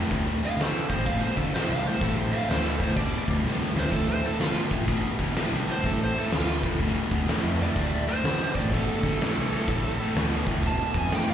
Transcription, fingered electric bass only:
0.11 0.40 D2 medium
0.57 0.94 D3 medium
0.98 1.20 A1 medium
1.37 1.53 D3 medium
1.69 1.99 C2 medium
2.01 2.31 A1 loud
2.49 2.78 D2 loud
2.89 3.12 D2 medium
3.28 3.42 D2 loud
3.43 3.72 C2 medium
3.74 3.90 D2 medium
3.92 4.21 D2 medium
4.40 4.77 D3 loud
4.80 5.03 A1 medium
5.19 5.35 D3 medium
5.52 5.82 C2 medium
5.84 6.13 A1 medium
6.34 6.62 D2 loud
6.74 6.95 D2 medium
7.12 7.27 D2 loud
7.43 7.66 F2 loud
7.76 8.05 D2 loud
8.24 8.61 D3 medium
8.64 8.86 A1 medium
9.04 9.19 D3 medium
9.37 9.67 C2 medium
9.69 9.97 A1 medium
10.15 10.44 D2 loud
10.56 10.78 D2 loud
10.95 11.10 F2 medium
11.12 11.34 E2 medium

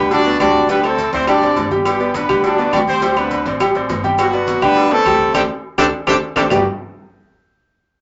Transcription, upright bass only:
0.00 0.37 D2 loud
0.40 1.07 D2 loud
1.13 1.40 D2 loud
1.42 1.55 A1 medium
1.57 2.24 G1 loud
2.29 2.70 D2 loud
2.73 3.40 D2 loud
3.45 3.73 A1 medium
3.75 3.88 A1 medium
3.89 4.57 G1 loud
4.62 5.03 D2 loud
5.05 5.33 D2 loud
5.35 5.45 D2 loud
5.78 5.89 D2 loud
6.07 6.18 D2 loud
6.36 6.47 D2 loud
6.51 6.64 G1 loud

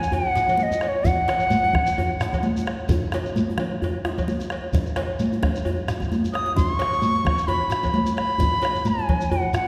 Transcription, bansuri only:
0.00 0.16 G#5 medium
0.14 0.60 F#5 loud
0.60 0.84 D#5 medium
0.60 0.64 F#5 medium
0.84 0.89 D#5 medium
0.88 1.09 C#5 medium
1.07 2.45 F#5 medium
6.33 6.55 D#6 medium
6.56 6.74 C6 loud
6.74 7.49 C#6 loud
7.48 8.16 B5 medium
8.16 8.90 B5 medium
8.88 9.32 G#5 medium
9.31 9.54 F#5 medium
9.55 9.68 F#5 medium

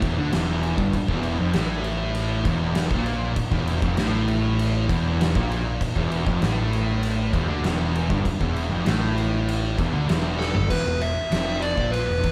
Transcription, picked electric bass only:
0.03 0.16 E1 loud
0.17 0.31 D2 loud
0.33 0.75 E1 medium
0.78 0.92 G1 medium
1.08 1.37 E1 medium
1.39 1.53 F1 loud
1.54 2.41 A1 loud
2.45 2.88 E1 medium
2.91 3.33 A#1 loud
3.52 3.80 E1 medium
3.82 3.97 F1 loud
3.98 4.85 A1 loud
4.89 5.32 E1 medium
5.36 5.78 A#1 loud
5.96 6.25 E1 loud
6.27 6.40 F1 loud
6.41 7.29 A1 loud
7.33 7.48 E1 loud
7.49 7.63 D2 loud
7.65 8.07 E1 loud
8.10 8.24 G1 loud
8.40 8.69 E1 medium
8.72 8.86 F1 loud
8.87 9.75 A1 loud
9.78 9.92 E1 loud
9.93 10.07 D2 loud
10.08 10.51 E1 medium
10.54 10.69 G1 medium
10.70 10.84 E1 medium
10.87 11.15 E1 medium
11.32 11.75 F1 loud
11.77 12.06 A#1 medium
12.08 12.22 E1 medium
12.24 12.32 E1 medium

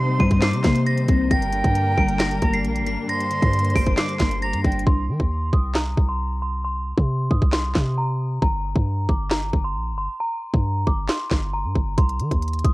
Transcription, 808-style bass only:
0.00 0.19 C3 loud
0.20 0.55 G2 loud
0.53 0.64 C3 loud
0.64 1.07 C3 loud
1.09 1.30 C2 loud
1.31 1.63 G1 loud
1.64 1.96 G2 loud
1.98 2.40 G1 loud
2.42 2.66 G1 loud
2.65 2.83 A#1 loud
2.81 2.97 G1 loud
3.42 3.74 G2 loud
3.76 3.97 G1 loud
4.20 4.55 G1 loud
4.53 4.64 G2 loud
4.64 4.86 G1 loud
4.87 5.10 C2 loud
5.09 5.19 D#3 loud
5.20 5.52 D#2 loud
5.53 5.96 C2 loud
5.98 6.94 C2 loud
6.98 7.30 C3 loud
7.31 7.42 G2 loud
7.42 7.74 C2 loud
7.76 8.40 C3 loud
8.42 8.74 G1 loud
8.76 9.08 G2 loud
9.09 9.52 G1 loud
9.53 9.77 G1 loud
9.76 9.94 A#1 loud
9.92 10.08 G1 loud
10.53 10.85 G2 loud
10.87 11.08 G1 loud
11.31 11.66 G1 loud
11.64 11.75 G2 loud
11.75 11.97 G1 loud
11.98 12.21 C2 loud
12.20 12.31 D#3 loud
12.31 12.63 D#2 loud
12.64 12.73 C2 loud

